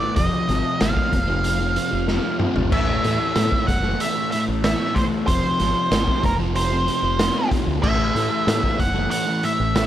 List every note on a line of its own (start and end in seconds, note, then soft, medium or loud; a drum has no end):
0.00 0.15 A2 medium
0.00 0.15 E3 medium
0.00 0.16 A3 medium
0.00 0.16 D5 medium
0.16 0.29 F1 medium
0.16 0.47 F2 medium
0.16 0.48 C3 medium
0.16 0.50 F3 loud
0.16 0.82 D#5 loud
0.16 kick loud
0.16 closed hi-hat medium
0.49 0.61 G#1 medium
0.49 0.79 F2 medium
0.49 0.80 C3 medium
0.49 0.81 F3 medium
0.49 closed hi-hat medium
0.80 0.93 G#1 loud
0.80 1.11 F2 loud
0.80 0.96 C3 medium
0.80 0.94 F3 loud
0.80 2.37 F5 medium
0.80 snare loud
0.80 closed hi-hat loud
0.95 1.12 C3 medium
0.95 1.12 F3 medium
0.95 kick medium
1.13 1.76 F1 loud
1.13 muted distorted electric guitar stroke medium
1.13 kick medium
1.13 closed hi-hat medium
1.28 1.61 C3 medium
1.28 1.58 F3 medium
1.44 closed hi-hat medium
1.60 1.76 C3 medium
1.60 1.77 F3 medium
1.75 2.06 F2 medium
1.75 1.93 C3 medium
1.75 1.90 F3 medium
1.75 closed hi-hat medium
1.91 2.18 F1 medium
1.91 2.08 C3 medium
1.91 2.09 F3 medium
2.07 2.38 F2 loud
2.07 2.24 C3 loud
2.07 2.22 F3 loud
2.07 snare medium
2.23 2.39 C3 medium
2.23 2.41 F3 medium
2.39 2.70 F2 medium
2.39 2.70 C3 medium
2.39 2.71 F3 medium
2.39 mid tom medium
2.56 2.69 G1 medium
2.56 floor tom medium
2.71 2.98 A1 medium
2.71 3.02 A2 medium
2.71 3.03 E3 medium
2.71 3.04 A3 loud
2.71 3.71 E5 loud
2.71 kick loud
2.71 crash medium
3.03 3.34 A2 medium
3.03 3.17 A2 loud
3.03 3.35 E3 medium
3.03 3.37 A3 medium
3.03 snare soft
3.03 closed hi-hat medium
3.36 3.67 A2 loud
3.36 3.49 A2 loud
3.36 3.53 E3 loud
3.36 3.51 A3 loud
3.36 snare loud
3.36 closed hi-hat loud
3.52 3.67 E3 medium
3.52 3.68 A3 medium
3.52 kick medium
3.67 3.94 F#1 medium
3.67 4.00 F#5 loud
3.67 muted distorted electric guitar stroke soft
3.67 kick medium
3.67 snare soft
3.67 closed hi-hat medium
3.83 4.17 E3 medium
3.83 4.14 A3 medium
4.00 4.30 E5 loud
4.00 closed hi-hat loud
4.15 4.32 E3 medium
4.15 4.34 A3 medium
4.31 4.62 A2 medium
4.31 4.49 E3 medium
4.31 4.47 A3 medium
4.31 4.40 E5 medium
4.31 closed hi-hat medium
4.48 4.74 A1 medium
4.48 4.63 E3 medium
4.48 4.64 A3 medium
4.63 4.94 A2 medium
4.63 4.81 E3 loud
4.63 4.78 A3 loud
4.63 4.97 E5 loud
4.63 snare loud
4.63 closed hi-hat loud
4.79 4.96 E3 medium
4.79 4.97 A3 medium
4.95 5.26 A2 medium
4.95 5.26 E3 medium
4.95 5.27 A3 medium
4.95 5.03 C5 medium
4.95 kick medium
4.95 closed hi-hat medium
5.27 5.41 F1 medium
5.27 5.58 F2 medium
5.27 5.60 C3 loud
5.27 5.61 F3 loud
5.27 6.25 C5 loud
5.27 kick loud
5.27 closed hi-hat medium
5.60 5.73 G#1 medium
5.60 5.89 F2 medium
5.60 5.90 C3 medium
5.60 5.92 F3 medium
5.60 snare soft
5.60 closed hi-hat medium
5.90 6.04 G#1 medium
5.90 6.22 F2 loud
5.90 6.08 C3 loud
5.90 6.05 F3 loud
5.90 snare loud
5.90 closed hi-hat medium
6.06 6.22 C3 medium
6.06 6.23 F3 medium
6.06 kick medium
6.23 6.88 F1 medium
6.23 6.34 A#4 medium
6.23 muted distorted electric guitar stroke soft
6.23 kick medium
6.23 closed hi-hat medium
6.38 6.72 C3 medium
6.38 6.69 F3 medium
6.56 7.48 C5 medium
6.56 closed hi-hat medium
6.70 6.86 C3 medium
6.70 6.87 F3 medium
6.86 7.17 F2 medium
6.86 7.04 C3 medium
6.86 7.01 F3 medium
6.86 closed hi-hat medium
7.02 7.29 F1 medium
7.02 7.18 C3 medium
7.02 7.20 F3 medium
7.19 7.50 F2 loud
7.19 7.36 C3 medium
7.19 7.33 F3 loud
7.19 snare loud
7.19 closed hi-hat loud
7.34 7.51 C3 medium
7.34 7.52 F3 medium
7.51 7.81 F2 medium
7.51 7.82 C3 medium
7.51 7.83 F3 medium
7.51 kick medium
7.51 closed hi-hat medium
7.67 7.80 D2 loud
7.82 8.09 A1 medium
7.82 8.13 A2 loud
7.82 8.15 E3 loud
7.82 8.16 A3 loud
7.82 8.82 E5 loud
7.82 kick loud
7.82 crash loud
8.15 8.45 A2 medium
8.15 8.28 A2 medium
8.15 8.46 E3 medium
8.15 8.47 A3 medium
8.15 closed hi-hat medium
8.46 8.77 A2 medium
8.46 8.60 A2 loud
8.46 8.63 E3 medium
8.46 8.60 A3 loud
8.46 snare loud
8.46 closed hi-hat loud
8.62 8.78 E3 medium
8.62 8.79 A3 medium
8.62 kick medium
8.78 9.05 F#1 medium
8.78 9.10 F#5 loud
8.78 muted distorted electric guitar stroke soft
8.78 kick medium
8.78 closed hi-hat medium
8.94 9.28 E3 medium
8.94 9.26 A3 medium
9.11 9.44 F#5 loud
9.11 closed hi-hat loud
9.27 9.43 E3 medium
9.27 9.44 A3 medium
9.43 9.74 A2 medium
9.43 9.60 E3 medium
9.43 9.57 A3 medium
9.43 9.75 E5 medium
9.43 closed hi-hat medium
9.58 9.85 A1 medium
9.58 9.75 E3 medium
9.58 9.76 A3 medium
9.75 9.87 A2 medium
9.75 9.87 E3 medium
9.75 9.87 A3 medium
9.75 9.87 E5 loud
9.75 snare loud
9.75 closed hi-hat loud